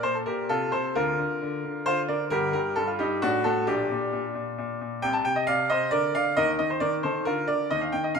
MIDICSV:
0, 0, Header, 1, 2, 480
1, 0, Start_track
1, 0, Key_signature, -2, "major"
1, 0, Tempo, 454201
1, 1016, Time_signature, 3, 2, 24, 8
1, 4364, Tempo, 447427
1, 8727, End_track
2, 0, Start_track
2, 0, Title_t, "Grand piano"
2, 0, Program_c, 0, 0
2, 34, Note_on_c, 0, 72, 108
2, 44, Note_on_c, 0, 46, 64
2, 155, Note_on_c, 0, 69, 74
2, 162, Note_off_c, 0, 72, 0
2, 268, Note_off_c, 0, 46, 0
2, 273, Note_on_c, 0, 70, 96
2, 283, Note_off_c, 0, 69, 0
2, 284, Note_on_c, 0, 46, 62
2, 287, Note_on_c, 0, 67, 77
2, 514, Note_off_c, 0, 67, 0
2, 521, Note_on_c, 0, 69, 110
2, 522, Note_off_c, 0, 46, 0
2, 524, Note_off_c, 0, 70, 0
2, 528, Note_on_c, 0, 48, 75
2, 528, Note_on_c, 0, 65, 81
2, 744, Note_off_c, 0, 69, 0
2, 755, Note_off_c, 0, 65, 0
2, 758, Note_off_c, 0, 48, 0
2, 759, Note_on_c, 0, 72, 98
2, 774, Note_on_c, 0, 48, 65
2, 781, Note_on_c, 0, 69, 78
2, 1003, Note_off_c, 0, 69, 0
2, 1008, Note_on_c, 0, 70, 111
2, 1009, Note_off_c, 0, 48, 0
2, 1009, Note_off_c, 0, 72, 0
2, 1014, Note_on_c, 0, 65, 83
2, 1016, Note_on_c, 0, 50, 71
2, 1017, Note_on_c, 0, 38, 69
2, 1241, Note_off_c, 0, 50, 0
2, 1250, Note_off_c, 0, 38, 0
2, 1257, Note_on_c, 0, 50, 62
2, 1485, Note_off_c, 0, 50, 0
2, 1501, Note_on_c, 0, 50, 67
2, 1725, Note_off_c, 0, 50, 0
2, 1741, Note_on_c, 0, 50, 63
2, 1927, Note_off_c, 0, 70, 0
2, 1930, Note_off_c, 0, 65, 0
2, 1961, Note_off_c, 0, 50, 0
2, 1963, Note_on_c, 0, 72, 116
2, 1977, Note_on_c, 0, 50, 63
2, 1981, Note_on_c, 0, 65, 91
2, 2109, Note_off_c, 0, 72, 0
2, 2192, Note_off_c, 0, 50, 0
2, 2198, Note_off_c, 0, 65, 0
2, 2203, Note_on_c, 0, 74, 92
2, 2207, Note_on_c, 0, 70, 74
2, 2208, Note_on_c, 0, 50, 67
2, 2348, Note_off_c, 0, 74, 0
2, 2418, Note_off_c, 0, 70, 0
2, 2434, Note_on_c, 0, 70, 118
2, 2441, Note_off_c, 0, 50, 0
2, 2444, Note_on_c, 0, 31, 69
2, 2447, Note_on_c, 0, 43, 80
2, 2449, Note_on_c, 0, 67, 95
2, 2657, Note_off_c, 0, 70, 0
2, 2672, Note_off_c, 0, 43, 0
2, 2672, Note_off_c, 0, 67, 0
2, 2674, Note_on_c, 0, 70, 107
2, 2679, Note_off_c, 0, 31, 0
2, 2688, Note_on_c, 0, 43, 64
2, 2688, Note_on_c, 0, 67, 81
2, 2898, Note_off_c, 0, 70, 0
2, 2907, Note_off_c, 0, 43, 0
2, 2913, Note_off_c, 0, 67, 0
2, 2913, Note_on_c, 0, 69, 110
2, 2923, Note_on_c, 0, 43, 73
2, 3036, Note_on_c, 0, 65, 74
2, 3042, Note_off_c, 0, 69, 0
2, 3159, Note_off_c, 0, 43, 0
2, 3159, Note_on_c, 0, 67, 104
2, 3163, Note_off_c, 0, 65, 0
2, 3170, Note_on_c, 0, 63, 75
2, 3175, Note_on_c, 0, 43, 71
2, 3392, Note_off_c, 0, 63, 0
2, 3403, Note_off_c, 0, 67, 0
2, 3404, Note_off_c, 0, 43, 0
2, 3404, Note_on_c, 0, 66, 119
2, 3411, Note_on_c, 0, 45, 84
2, 3411, Note_on_c, 0, 62, 89
2, 3621, Note_off_c, 0, 66, 0
2, 3632, Note_off_c, 0, 62, 0
2, 3634, Note_off_c, 0, 45, 0
2, 3637, Note_on_c, 0, 69, 111
2, 3650, Note_on_c, 0, 45, 68
2, 3652, Note_on_c, 0, 66, 85
2, 3856, Note_off_c, 0, 69, 0
2, 3872, Note_off_c, 0, 66, 0
2, 3880, Note_off_c, 0, 45, 0
2, 3880, Note_on_c, 0, 67, 110
2, 3885, Note_on_c, 0, 34, 73
2, 3886, Note_on_c, 0, 62, 83
2, 3887, Note_on_c, 0, 46, 77
2, 4117, Note_off_c, 0, 34, 0
2, 4118, Note_off_c, 0, 46, 0
2, 4134, Note_on_c, 0, 46, 68
2, 4347, Note_off_c, 0, 46, 0
2, 4363, Note_on_c, 0, 46, 73
2, 4453, Note_off_c, 0, 67, 0
2, 4584, Note_off_c, 0, 46, 0
2, 4600, Note_on_c, 0, 46, 68
2, 4800, Note_off_c, 0, 62, 0
2, 4834, Note_off_c, 0, 46, 0
2, 4851, Note_on_c, 0, 46, 67
2, 5080, Note_off_c, 0, 46, 0
2, 5096, Note_on_c, 0, 46, 67
2, 5321, Note_off_c, 0, 46, 0
2, 5323, Note_on_c, 0, 79, 120
2, 5333, Note_on_c, 0, 36, 69
2, 5333, Note_on_c, 0, 48, 80
2, 5438, Note_on_c, 0, 81, 94
2, 5441, Note_off_c, 0, 79, 0
2, 5553, Note_off_c, 0, 48, 0
2, 5558, Note_off_c, 0, 36, 0
2, 5558, Note_off_c, 0, 81, 0
2, 5564, Note_on_c, 0, 79, 112
2, 5569, Note_on_c, 0, 48, 63
2, 5680, Note_off_c, 0, 79, 0
2, 5682, Note_on_c, 0, 75, 83
2, 5795, Note_off_c, 0, 48, 0
2, 5799, Note_off_c, 0, 75, 0
2, 5801, Note_on_c, 0, 77, 122
2, 5813, Note_on_c, 0, 48, 68
2, 5815, Note_on_c, 0, 74, 91
2, 6028, Note_off_c, 0, 74, 0
2, 6037, Note_off_c, 0, 48, 0
2, 6037, Note_off_c, 0, 77, 0
2, 6044, Note_on_c, 0, 75, 113
2, 6056, Note_on_c, 0, 48, 66
2, 6061, Note_on_c, 0, 72, 81
2, 6255, Note_off_c, 0, 75, 0
2, 6271, Note_off_c, 0, 72, 0
2, 6273, Note_on_c, 0, 74, 115
2, 6278, Note_off_c, 0, 48, 0
2, 6283, Note_on_c, 0, 50, 77
2, 6283, Note_on_c, 0, 70, 90
2, 6501, Note_off_c, 0, 70, 0
2, 6511, Note_off_c, 0, 50, 0
2, 6512, Note_off_c, 0, 74, 0
2, 6529, Note_on_c, 0, 77, 109
2, 6536, Note_on_c, 0, 50, 62
2, 6537, Note_on_c, 0, 74, 86
2, 6748, Note_off_c, 0, 74, 0
2, 6756, Note_off_c, 0, 50, 0
2, 6760, Note_off_c, 0, 77, 0
2, 6763, Note_on_c, 0, 75, 117
2, 6769, Note_on_c, 0, 39, 66
2, 6775, Note_on_c, 0, 51, 77
2, 6775, Note_on_c, 0, 70, 97
2, 6903, Note_off_c, 0, 75, 0
2, 6986, Note_off_c, 0, 70, 0
2, 6992, Note_off_c, 0, 39, 0
2, 6993, Note_off_c, 0, 51, 0
2, 7001, Note_on_c, 0, 75, 98
2, 7009, Note_on_c, 0, 51, 63
2, 7115, Note_off_c, 0, 75, 0
2, 7122, Note_on_c, 0, 72, 77
2, 7226, Note_off_c, 0, 51, 0
2, 7231, Note_on_c, 0, 74, 109
2, 7236, Note_off_c, 0, 72, 0
2, 7242, Note_on_c, 0, 51, 66
2, 7243, Note_on_c, 0, 70, 85
2, 7375, Note_off_c, 0, 74, 0
2, 7461, Note_off_c, 0, 70, 0
2, 7470, Note_off_c, 0, 51, 0
2, 7477, Note_on_c, 0, 72, 92
2, 7492, Note_on_c, 0, 51, 60
2, 7493, Note_on_c, 0, 69, 72
2, 7691, Note_off_c, 0, 72, 0
2, 7707, Note_off_c, 0, 69, 0
2, 7715, Note_on_c, 0, 70, 110
2, 7716, Note_off_c, 0, 51, 0
2, 7728, Note_on_c, 0, 50, 74
2, 7731, Note_on_c, 0, 65, 79
2, 7930, Note_off_c, 0, 70, 0
2, 7946, Note_off_c, 0, 65, 0
2, 7953, Note_off_c, 0, 50, 0
2, 7953, Note_on_c, 0, 74, 97
2, 7968, Note_on_c, 0, 70, 76
2, 7972, Note_on_c, 0, 50, 60
2, 8185, Note_off_c, 0, 70, 0
2, 8194, Note_off_c, 0, 74, 0
2, 8196, Note_off_c, 0, 50, 0
2, 8200, Note_on_c, 0, 75, 107
2, 8207, Note_on_c, 0, 39, 61
2, 8208, Note_on_c, 0, 51, 71
2, 8316, Note_on_c, 0, 77, 75
2, 8318, Note_off_c, 0, 75, 0
2, 8432, Note_off_c, 0, 51, 0
2, 8435, Note_on_c, 0, 79, 93
2, 8437, Note_off_c, 0, 39, 0
2, 8437, Note_off_c, 0, 77, 0
2, 8448, Note_on_c, 0, 51, 56
2, 8557, Note_on_c, 0, 75, 73
2, 8559, Note_off_c, 0, 79, 0
2, 8671, Note_off_c, 0, 51, 0
2, 8673, Note_on_c, 0, 77, 108
2, 8681, Note_off_c, 0, 75, 0
2, 8687, Note_on_c, 0, 51, 57
2, 8727, Note_off_c, 0, 51, 0
2, 8727, Note_off_c, 0, 77, 0
2, 8727, End_track
0, 0, End_of_file